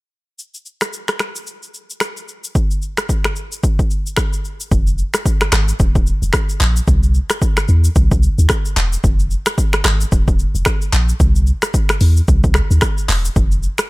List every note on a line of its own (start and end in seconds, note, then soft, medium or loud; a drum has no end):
0.39 shaker medium
0.54 shaker soft
0.66 shaker soft
0.81 finger snap medium
0.81 cross-stick medium
0.81 shaker medium
0.93 shaker medium
1.08 finger snap medium
1.08 cross-stick medium
1.08 shaker medium
1.19 finger snap medium
1.19 cross-stick medium
1.19 shaker medium
1.36 shaker medium
1.47 shaker medium
1.63 shaker soft
1.74 shaker medium
1.90 shaker medium
2.00 finger snap medium
2.00 cross-stick medium
2.00 shaker medium
2.17 shaker medium
2.28 shaker soft
2.44 shaker medium
2.55 kick loud
2.55 shaker medium
2.71 shaker medium
2.82 shaker soft
2.97 finger snap medium
2.97 cross-stick medium
2.97 shaker medium
3.09 kick medium
3.09 shaker medium
3.24 finger snap medium
3.24 cross-stick medium
3.24 shaker medium
3.36 shaker medium
3.52 shaker medium
3.63 kick loud
3.63 shaker medium
3.79 kick loud
3.79 shaker soft
3.91 shaker medium
4.06 shaker medium
4.17 finger snap medium
4.17 kick medium
4.17 cross-stick medium
4.17 shaker medium
4.33 shaker medium
4.45 shaker soft
4.60 shaker medium
4.72 5.03 F1 loud
4.72 kick loud
4.72 shaker medium
4.87 shaker medium
4.98 shaker medium
5.14 finger snap medium
5.14 cross-stick medium
5.14 shaker medium
5.26 kick loud
5.26 shaker medium
5.41 finger snap medium
5.41 cross-stick medium
5.41 shaker medium
5.52 5.73 G#1 medium
5.52 finger snap medium
5.52 cross-stick loud
5.52 clap loud
5.52 shaker medium
5.68 shaker medium
5.79 6.11 D#1 medium
5.79 kick loud
5.79 shaker medium
5.95 kick loud
5.95 shaker medium
6.07 shaker medium
6.22 6.31 F1 medium
6.22 shaker medium
6.33 finger snap medium
6.33 kick medium
6.33 cross-stick loud
6.33 shaker medium
6.49 shaker medium
6.61 6.81 A#1 medium
6.61 clap medium
6.61 shaker medium
6.76 shaker loud
6.88 7.19 C2 loud
6.88 kick loud
6.88 shaker medium
7.03 shaker medium
7.14 shaker soft
7.30 finger snap medium
7.30 cross-stick medium
7.30 shaker loud
7.42 kick loud
7.42 shaker medium
7.57 finger snap medium
7.57 cross-stick medium
7.57 shaker medium
7.68 7.89 E2 medium
7.68 shaker medium
7.84 shaker medium
7.96 8.28 C2 medium
7.96 kick loud
7.96 shaker medium
8.11 kick loud
8.11 shaker medium
8.23 shaker medium
8.38 8.47 D#2 medium
8.38 shaker medium
8.49 finger snap medium
8.49 kick medium
8.49 cross-stick loud
8.49 shaker medium
8.65 shaker medium
8.77 8.97 E1 loud
8.77 clap medium
8.77 shaker medium
8.93 shaker loud
9.04 9.36 F1 loud
9.04 kick loud
9.04 shaker medium
9.19 shaker medium
9.31 shaker medium
9.46 finger snap medium
9.46 cross-stick medium
9.46 shaker loud
9.58 kick loud
9.58 shaker medium
9.73 finger snap medium
9.73 cross-stick medium
9.73 shaker medium
9.84 10.05 G#1 medium
9.84 finger snap medium
9.84 cross-stick loud
9.84 clap loud
9.84 shaker medium
10.01 shaker medium
10.12 10.44 D#1 loud
10.12 kick loud
10.12 shaker medium
10.28 kick loud
10.28 shaker medium
10.39 shaker medium
10.55 10.63 F1 medium
10.55 shaker medium
10.65 finger snap medium
10.65 kick medium
10.65 cross-stick loud
10.65 shaker medium
10.82 shaker medium
10.93 11.13 A#1 medium
10.93 clap medium
10.93 shaker medium
11.09 shaker loud
11.20 11.52 C2 loud
11.20 kick loud
11.20 shaker medium
11.36 shaker medium
11.47 shaker medium
11.62 finger snap medium
11.62 cross-stick medium
11.62 shaker medium
11.74 kick loud
11.74 shaker medium
11.89 finger snap medium
11.89 cross-stick medium
11.89 shaker medium
12.01 12.21 E2 medium
12.01 open hi-hat medium
12.01 shaker medium
12.17 shaker medium
12.28 12.60 C2 medium
12.28 kick loud
12.28 shaker medium
12.44 kick loud
12.44 shaker medium
12.54 finger snap medium
12.54 cross-stick loud
12.54 shaker medium
12.71 12.79 D#2 medium
12.71 shaker medium
12.81 finger snap medium
12.81 kick medium
12.81 cross-stick loud
12.81 shaker medium
12.98 shaker medium
13.09 13.29 E1 loud
13.09 clap medium
13.09 open hi-hat medium
13.09 shaker medium
13.25 shaker loud
13.36 13.68 F1 loud
13.36 kick loud
13.36 shaker medium
13.52 shaker medium
13.63 shaker soft
13.78 finger snap medium
13.78 cross-stick medium
13.78 shaker loud